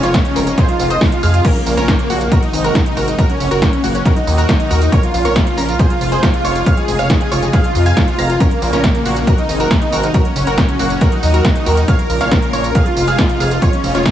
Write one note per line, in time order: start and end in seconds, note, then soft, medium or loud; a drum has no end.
0.00 0.21 F1 medium
0.00 0.57 C#3 medium
0.00 2.27 F3 medium
0.00 1.42 G#3 medium
0.00 1.42 D#4 medium
0.00 2.27 F4 medium
0.00 0.13 F4 medium
0.00 0.13 C#5 loud
0.00 0.13 C#6 medium
0.00 snare soft
0.00 closed hi-hat medium
0.00 tambourine soft
0.14 0.24 C#4 medium
0.14 0.24 C#5 medium
0.14 kick loud
0.14 snare loud
0.14 closed hi-hat loud
0.14 tambourine soft
0.25 0.35 C#4 medium
0.25 0.35 C#5 medium
0.25 closed hi-hat medium
0.36 0.53 F1 medium
0.36 0.46 C#4 medium
0.36 0.46 A#4 medium
0.36 0.46 A#5 medium
0.36 open hi-hat loud
0.36 tambourine medium
0.47 0.56 C#4 medium
0.47 0.57 C#5 medium
0.47 closed hi-hat medium
0.47 tambourine soft
0.57 1.44 C3 medium
0.57 0.67 G#4 medium
0.57 0.67 C5 loud
0.57 0.67 C6 medium
0.57 kick loud
0.57 snare soft
0.57 closed hi-hat loud
0.57 tambourine soft
0.68 0.78 F4 medium
0.68 0.78 F5 medium
0.68 closed hi-hat medium
0.79 0.97 F1 loud
0.79 0.89 F4 medium
0.79 0.89 F5 medium
0.79 open hi-hat loud
0.79 tambourine medium
0.90 1.00 C5 medium
0.90 1.00 D#5 medium
0.90 1.00 D#6 loud
0.90 closed hi-hat medium
0.90 tambourine soft
1.01 1.11 F4 medium
1.01 1.11 F5 medium
1.01 kick loud
1.01 snare loud
1.01 open hi-hat medium
1.01 tambourine soft
1.12 1.22 F4 medium
1.12 1.22 F5 medium
1.12 closed hi-hat medium
1.23 1.40 F2 loud
1.23 1.33 G#4 medium
1.23 1.33 F5 loud
1.23 1.33 F6 medium
1.23 open hi-hat loud
1.23 tambourine medium
1.34 1.44 F4 medium
1.34 1.44 F5 medium
1.34 closed hi-hat medium
1.34 tambourine soft
1.45 2.31 A#2 medium
1.45 2.31 C#3 medium
1.45 2.31 C#4 medium
1.45 1.54 C#4 medium
1.45 1.54 A#4 loud
1.45 1.54 A#5 loud
1.45 kick loud
1.45 closed hi-hat loud
1.45 crash medium
1.45 tambourine soft
1.56 1.65 A#3 medium
1.56 1.65 A#4 medium
1.56 closed hi-hat medium
1.66 1.75 A#1 loud
1.66 1.76 A#3 medium
1.66 1.76 A#4 medium
1.66 open hi-hat loud
1.66 tambourine medium
1.77 1.94 A#1 medium
1.77 1.87 C#4 medium
1.77 1.87 A#4 loud
1.77 1.87 A#5 medium
1.77 snare soft
1.77 closed hi-hat medium
1.77 tambourine soft
1.88 1.98 A#3 medium
1.88 1.97 A#4 medium
1.88 kick loud
1.88 snare loud
1.88 closed hi-hat loud
1.88 tambourine soft
1.99 2.09 A#3 medium
1.99 2.09 A#4 medium
1.99 closed hi-hat medium
2.10 2.27 A#1 medium
2.10 2.20 A#3 medium
2.10 2.20 F#4 loud
2.10 2.20 F#5 medium
2.10 open hi-hat loud
2.10 tambourine medium
2.21 2.30 A#3 medium
2.21 2.31 A#4 medium
2.21 closed hi-hat medium
2.21 tambourine soft
2.31 3.18 C3 medium
2.31 3.18 D#3 medium
2.31 3.18 G#3 medium
2.31 3.18 A#3 medium
2.31 3.18 D#4 medium
2.31 2.41 F#4 medium
2.31 2.41 A#4 medium
2.31 2.41 A#5 loud
2.31 kick loud
2.31 closed hi-hat medium
2.31 tambourine soft
2.43 2.52 D#4 medium
2.43 2.52 D#5 medium
2.43 closed hi-hat medium
2.53 2.70 G#1 loud
2.53 2.63 D#4 medium
2.53 2.63 D#5 medium
2.53 open hi-hat loud
2.53 tambourine medium
2.64 2.74 F#4 medium
2.64 2.74 A#4 medium
2.64 2.74 A#5 loud
2.64 closed hi-hat medium
2.64 tambourine soft
2.75 2.85 D#4 medium
2.75 2.84 D#5 medium
2.75 kick loud
2.75 snare loud
2.75 closed hi-hat medium
2.75 tambourine soft
2.86 2.96 D#4 medium
2.86 2.96 D#5 medium
2.86 closed hi-hat medium
2.97 3.14 G#1 medium
2.97 3.07 F#4 medium
2.97 3.07 A#4 loud
2.97 3.07 A#5 medium
2.97 open hi-hat loud
2.97 tambourine medium
3.08 3.17 D#4 medium
3.08 3.17 D#5 medium
3.08 closed hi-hat medium
3.08 tambourine soft
3.18 4.05 A#2 medium
3.18 4.05 C#3 medium
3.18 4.91 F#3 medium
3.18 4.05 C#4 medium
3.18 3.28 F#4 medium
3.18 4.91 F#4 medium
3.18 3.28 A#4 loud
3.18 3.28 A#5 loud
3.18 kick loud
3.18 closed hi-hat medium
3.18 tambourine soft
3.29 3.39 C#4 medium
3.29 3.39 C#5 medium
3.29 closed hi-hat medium
3.40 3.49 F#1 loud
3.40 3.50 C#4 medium
3.40 3.50 C#5 medium
3.40 open hi-hat loud
3.40 tambourine medium
3.51 3.68 F#1 medium
3.51 3.61 F#4 medium
3.51 3.61 A#4 loud
3.51 3.61 A#5 medium
3.51 closed hi-hat medium
3.51 tambourine soft
3.62 3.72 C#4 medium
3.62 3.71 C#5 medium
3.62 kick loud
3.62 snare loud
3.62 closed hi-hat medium
3.62 tambourine soft
3.72 3.83 C#4 medium
3.72 3.82 C#5 medium
3.72 closed hi-hat medium
3.83 4.01 F#1 medium
3.83 3.93 A#3 medium
3.83 3.93 F#4 medium
3.83 3.93 F#5 medium
3.83 open hi-hat loud
3.83 tambourine medium
3.94 4.04 C#4 medium
3.94 4.04 C#5 medium
3.94 closed hi-hat medium
3.94 tambourine soft
4.05 5.78 A#2 medium
4.05 4.92 D#3 medium
4.05 4.92 D#4 medium
4.05 4.15 F#4 medium
4.05 4.15 A#4 medium
4.05 4.15 A#5 medium
4.05 kick loud
4.05 snare soft
4.05 closed hi-hat medium
4.05 tambourine soft
4.16 4.26 D#4 medium
4.16 4.25 D#5 medium
4.16 closed hi-hat medium
4.27 4.44 D#2 loud
4.27 4.37 D#4 medium
4.27 4.37 D#5 medium
4.27 open hi-hat loud
4.27 tambourine medium
4.38 4.48 F#4 medium
4.38 4.48 A#4 loud
4.38 4.48 A#5 loud
4.38 closed hi-hat medium
4.38 tambourine soft
4.49 4.59 D#4 medium
4.49 4.58 D#5 medium
4.49 kick loud
4.49 snare loud
4.49 closed hi-hat medium
4.49 tambourine soft
4.59 4.69 D#4 medium
4.59 4.69 D#5 medium
4.59 closed hi-hat medium
4.70 4.88 D#2 loud
4.70 4.80 F#4 medium
4.70 4.80 A#4 medium
4.70 4.80 A#5 medium
4.70 open hi-hat loud
4.70 tambourine medium
4.81 4.91 D#4 medium
4.81 4.91 D#5 medium
4.81 closed hi-hat medium
4.81 tambourine soft
4.92 5.78 C#3 medium
4.92 9.23 F3 medium
4.92 5.79 C#4 medium
4.92 9.23 F4 medium
4.92 5.02 A#4 medium
4.92 5.02 C#5 loud
4.92 5.02 C#6 loud
4.92 kick loud
4.92 closed hi-hat medium
4.92 tambourine soft
5.03 5.13 F4 medium
5.03 5.12 F5 medium
5.03 closed hi-hat medium
5.14 5.23 A#1 loud
5.14 5.24 F4 medium
5.14 5.24 F5 medium
5.14 open hi-hat loud
5.14 tambourine medium
5.25 5.42 A#1 medium
5.25 5.35 A#4 medium
5.25 5.35 C#5 loud
5.25 5.35 C#6 medium
5.25 snare soft
5.25 closed hi-hat soft
5.25 tambourine soft
5.36 5.46 F4 medium
5.36 5.45 F5 medium
5.36 kick loud
5.36 snare loud
5.36 closed hi-hat medium
5.36 tambourine soft
5.46 5.56 F4 medium
5.46 5.56 F5 medium
5.46 closed hi-hat medium
5.57 5.75 A#1 medium
5.57 5.67 C#4 medium
5.57 5.67 A#4 medium
5.57 5.67 A#5 medium
5.57 open hi-hat loud
5.57 tambourine medium
5.68 5.78 F4 medium
5.68 5.78 F5 medium
5.68 closed hi-hat medium
5.68 tambourine soft
5.79 6.65 C3 medium
5.79 8.38 G#3 medium
5.79 8.38 D#4 medium
5.79 5.89 G#4 medium
5.79 5.89 C5 medium
5.79 5.89 C6 loud
5.79 kick loud
5.79 closed hi-hat medium
5.79 tambourine soft
5.90 6.00 F4 medium
5.90 5.99 F5 medium
5.90 closed hi-hat medium
6.01 6.18 F1 loud
6.01 6.11 F4 medium
6.01 6.11 F5 medium
6.01 open hi-hat loud
6.01 tambourine medium
6.12 6.22 G#4 medium
6.12 6.22 C5 loud
6.12 6.22 C6 loud
6.12 closed hi-hat soft
6.12 tambourine soft
6.23 6.33 F4 medium
6.23 6.32 F5 medium
6.23 kick loud
6.23 snare loud
6.23 closed hi-hat loud
6.23 tambourine soft
6.34 6.43 F4 medium
6.34 6.43 F5 medium
6.34 closed hi-hat medium
6.45 6.62 F1 loud
6.45 6.54 F4 medium
6.45 6.54 C#5 medium
6.45 6.54 C#6 loud
6.45 open hi-hat loud
6.45 tambourine medium
6.55 6.65 F4 medium
6.55 6.65 F5 medium
6.55 closed hi-hat medium
6.55 tambourine soft
6.66 7.52 C#3 medium
6.66 6.76 C#5 medium
6.66 6.76 F5 loud
6.66 6.76 F6 loud
6.66 kick loud
6.66 closed hi-hat medium
6.66 tambourine soft
6.77 6.87 G#4 medium
6.77 6.87 G#5 medium
6.77 closed hi-hat medium
6.88 6.97 F1 loud
6.88 6.98 G#4 medium
6.88 6.98 G#5 medium
6.88 open hi-hat loud
6.88 tambourine medium
6.99 7.16 F1 medium
6.99 7.09 C#5 medium
6.99 7.09 F5 loud
6.99 7.09 F6 medium
6.99 closed hi-hat soft
6.99 tambourine soft
7.10 7.19 G#4 medium
7.10 7.19 G#5 medium
7.10 kick loud
7.10 snare loud
7.10 closed hi-hat medium
7.10 tambourine soft
7.20 7.30 G#4 medium
7.20 7.30 G#5 medium
7.20 closed hi-hat soft
7.31 7.49 F1 medium
7.31 7.41 F4 medium
7.31 7.41 C#5 medium
7.31 7.41 C#6 medium
7.31 open hi-hat loud
7.31 tambourine medium
7.42 7.52 G#4 medium
7.42 7.52 G#5 medium
7.42 closed hi-hat soft
7.42 tambourine soft
7.53 8.39 C3 medium
7.53 7.63 G#4 medium
7.53 7.63 F5 medium
7.53 7.63 F6 medium
7.53 kick loud
7.53 snare soft
7.53 closed hi-hat medium
7.53 tambourine soft
7.64 7.74 F4 medium
7.64 7.74 F5 medium
7.64 closed hi-hat medium
7.75 7.92 F2 medium
7.75 7.85 F4 medium
7.75 7.85 F5 medium
7.75 open hi-hat loud
7.75 tambourine medium
7.86 7.96 F5 medium
7.86 7.96 G#5 medium
7.86 7.96 G#6 loud
7.86 closed hi-hat medium
7.86 tambourine soft
7.97 8.06 F4 medium
7.97 8.06 F5 medium
7.97 kick loud
7.97 snare loud
7.97 closed hi-hat medium
7.97 tambourine soft
8.08 8.17 F4 medium
8.08 8.17 F5 medium
8.08 closed hi-hat medium
8.18 8.36 F1 medium
8.18 8.28 F5 medium
8.18 8.28 A#5 medium
8.18 8.28 A#6 medium
8.18 open hi-hat loud
8.18 tambourine medium
8.29 8.39 F4 medium
8.29 8.39 F5 medium
8.29 closed hi-hat medium
8.29 tambourine soft
8.40 9.26 A#2 medium
8.40 9.26 C#3 medium
8.40 8.50 C#4 medium
8.40 9.26 C#4 medium
8.40 8.50 A#4 loud
8.40 8.50 A#5 loud
8.40 kick loud
8.40 closed hi-hat medium
8.40 tambourine soft
8.51 8.61 A#3 medium
8.51 8.61 A#4 medium
8.51 closed hi-hat soft
8.62 8.71 A#1 loud
8.62 8.72 A#3 medium
8.62 8.72 A#4 medium
8.62 open hi-hat loud
8.62 tambourine medium
8.73 8.90 A#1 medium
8.73 8.83 C#4 medium
8.73 8.83 A#4 loud
8.73 8.83 A#5 medium
8.73 snare soft
8.73 closed hi-hat soft
8.73 tambourine soft
8.84 8.93 A#3 medium
8.84 8.93 A#4 medium
8.84 kick loud
8.84 snare loud
8.84 closed hi-hat medium
8.84 tambourine soft
8.95 9.04 A#3 medium
8.95 9.04 A#4 medium
8.95 closed hi-hat soft
9.06 9.23 A#1 medium
9.06 9.15 A#3 medium
9.06 9.15 F#4 medium
9.06 9.15 F#5 medium
9.06 open hi-hat loud
9.06 tambourine medium
9.16 9.26 A#3 medium
9.16 9.26 A#4 medium
9.16 closed hi-hat medium
9.16 tambourine soft
9.27 10.13 C3 medium
9.27 10.13 D#3 medium
9.27 10.13 G#3 medium
9.27 10.13 A#3 medium
9.27 10.13 D#4 medium
9.27 9.37 F#4 medium
9.27 9.37 A#4 medium
9.27 9.37 A#5 loud
9.27 kick loud
9.27 closed hi-hat medium
9.27 tambourine soft
9.38 9.48 D#4 medium
9.38 9.48 D#5 medium
9.38 closed hi-hat medium
9.49 9.66 G#1 loud
9.49 9.59 D#4 medium
9.49 9.59 D#5 medium
9.49 open hi-hat loud
9.49 tambourine medium
9.60 9.70 F#4 medium
9.60 9.70 A#4 loud
9.60 9.70 A#5 loud
9.60 closed hi-hat medium
9.60 tambourine soft
9.71 9.80 D#4 medium
9.71 9.80 D#5 medium
9.71 kick loud
9.71 snare loud
9.71 closed hi-hat medium
9.71 tambourine soft
9.81 9.91 D#4 medium
9.81 9.91 D#5 medium
9.81 closed hi-hat medium
9.92 10.10 G#1 medium
9.92 10.02 F#4 medium
9.92 10.02 A#4 medium
9.92 10.02 A#5 loud
9.92 open hi-hat loud
9.92 tambourine medium
10.03 10.13 D#4 medium
10.03 10.13 D#5 medium
10.03 closed hi-hat medium
10.03 tambourine soft
10.14 11.00 A#2 medium
10.14 11.00 C#3 medium
10.14 11.86 F#3 medium
10.14 11.00 C#4 medium
10.14 11.86 F#4 medium
10.14 10.24 F#4 medium
10.14 10.24 A#4 loud
10.14 10.24 A#5 loud
10.14 kick loud
10.14 closed hi-hat medium
10.14 tambourine soft
10.25 10.35 C#4 medium
10.25 10.34 C#5 medium
10.25 closed hi-hat medium
10.36 10.45 F#1 loud
10.36 10.46 C#4 medium
10.36 10.46 C#5 medium
10.36 open hi-hat loud
10.36 tambourine medium
10.47 10.64 F#1 medium
10.47 10.57 F#4 medium
10.47 10.57 A#4 loud
10.47 10.57 A#5 loud
10.47 closed hi-hat medium
10.47 tambourine soft
10.58 10.67 C#4 medium
10.58 10.67 C#5 medium
10.58 kick loud
10.58 snare loud
10.58 closed hi-hat medium
10.58 tambourine soft
10.69 10.78 C#4 medium
10.69 10.78 C#5 medium
10.69 closed hi-hat medium
10.79 10.97 F#1 medium
10.79 10.89 A#3 medium
10.79 10.89 F#4 medium
10.79 10.89 F#5 medium
10.79 open hi-hat loud
10.79 tambourine medium
10.90 11.00 C#4 medium
10.90 11.00 C#5 medium
10.90 closed hi-hat medium
10.90 tambourine soft
11.01 11.87 A#2 medium
11.01 11.87 D#3 medium
11.01 11.87 D#4 medium
11.01 11.11 F#4 medium
11.01 11.11 A#4 medium
11.01 11.11 A#5 medium
11.01 kick loud
11.01 snare soft
11.01 closed hi-hat loud
11.01 tambourine soft
11.12 11.22 D#4 medium
11.12 11.22 D#5 medium
11.12 closed hi-hat medium
11.23 11.40 D#2 loud
11.23 11.33 D#4 medium
11.23 11.33 D#5 medium
11.23 open hi-hat loud
11.23 tambourine medium
11.34 11.43 F#4 medium
11.34 11.43 A#4 loud
11.34 11.43 A#5 loud
11.34 closed hi-hat medium
11.34 tambourine soft
11.45 11.54 D#4 medium
11.45 11.54 D#5 medium
11.45 kick loud
11.45 snare loud
11.45 closed hi-hat medium
11.45 tambourine soft
11.55 11.65 D#4 medium
11.55 11.65 D#5 medium
11.55 closed hi-hat medium
11.66 11.84 D#2 medium
11.66 11.76 F#4 medium
11.66 11.76 A#4 medium
11.66 11.76 A#5 medium
11.66 open hi-hat loud
11.66 tambourine medium
11.77 11.87 D#4 medium
11.77 11.87 D#5 medium
11.77 closed hi-hat medium
11.77 tambourine soft
11.88 12.74 A#2 medium
11.88 12.74 C#3 medium
11.88 12.74 F3 medium
11.88 12.74 C#4 medium
11.88 12.74 F4 medium
11.88 11.98 C#5 medium
11.88 11.98 F5 loud
11.88 11.98 F6 loud
11.88 kick loud
11.88 closed hi-hat loud
11.88 tambourine soft
11.99 12.09 A#4 medium
11.99 12.08 A#5 medium
11.99 closed hi-hat medium
12.10 12.18 A#1 loud
12.10 12.20 A#4 medium
12.10 12.20 A#5 medium
12.10 open hi-hat loud
12.10 tambourine medium
12.21 12.38 A#1 medium
12.21 12.30 C#5 medium
12.21 12.30 F5 loud
12.21 12.30 F6 loud
12.21 snare soft
12.21 closed hi-hat medium
12.21 tambourine soft
12.31 12.41 A#4 medium
12.31 12.41 A#5 medium
12.31 kick loud
12.31 snare loud
12.31 closed hi-hat loud
12.31 tambourine soft
12.42 12.52 A#4 medium
12.42 12.52 A#5 medium
12.42 closed hi-hat medium
12.53 12.70 A#1 medium
12.53 12.63 A#4 medium
12.53 12.63 C#5 medium
12.53 12.63 C#6 medium
12.53 open hi-hat loud
12.53 tambourine medium
12.64 12.74 A#4 medium
12.64 12.74 A#5 medium
12.64 closed hi-hat medium
12.64 tambourine soft
12.75 13.61 C3 medium
12.75 14.11 F3 medium
12.75 13.61 G#3 medium
12.75 13.61 D#4 medium
12.75 13.61 F4 medium
12.75 12.85 G#4 medium
12.75 12.85 F5 medium
12.75 12.85 F6 loud
12.75 kick loud
12.75 closed hi-hat loud
12.75 tambourine soft
12.86 12.96 F4 medium
12.86 12.95 F5 medium
12.86 closed hi-hat medium
12.97 13.14 F1 loud
12.97 13.07 F4 medium
12.97 13.07 F5 medium
12.97 open hi-hat loud
12.97 tambourine medium
13.08 13.17 G#4 medium
13.08 13.17 F5 medium
13.08 13.17 F6 medium
13.08 closed hi-hat medium
13.08 tambourine soft
13.18 13.28 F4 medium
13.18 13.28 F5 medium
13.18 kick loud
13.18 snare loud
13.18 closed hi-hat medium
13.18 tambourine soft
13.29 13.39 F4 medium
13.29 13.39 F5 medium
13.29 closed hi-hat medium
13.40 13.57 F1 loud
13.40 13.50 G#4 medium
13.40 13.50 F5 medium
13.40 13.50 F6 loud
13.40 open hi-hat loud
13.40 tambourine medium
13.51 13.61 F4 medium
13.51 13.61 F5 medium
13.51 closed hi-hat medium
13.51 tambourine soft
13.62 14.11 C#3 medium
13.62 14.11 G#3 medium
13.62 14.11 D#4 medium
13.62 14.11 F4 medium
13.62 13.72 F4 medium
13.62 13.72 C#5 loud
13.62 13.72 C#6 loud
13.62 kick loud
13.62 closed hi-hat loud
13.62 tambourine soft
13.73 13.83 C#4 medium
13.73 13.82 C#5 medium
13.73 closed hi-hat medium
13.84 13.92 F1 loud
13.84 13.93 C#4 medium
13.84 13.93 C#5 medium
13.84 open hi-hat loud
13.84 tambourine medium
13.95 14.11 F1 medium
13.95 14.04 F4 medium
13.95 14.04 C#5 loud
13.95 14.04 C#6 medium
13.95 snare soft
13.95 closed hi-hat medium
13.95 tambourine soft
14.06 14.11 C#4 medium
14.06 14.11 C#5 medium
14.06 kick loud
14.06 snare loud
14.06 closed hi-hat loud
14.06 tambourine soft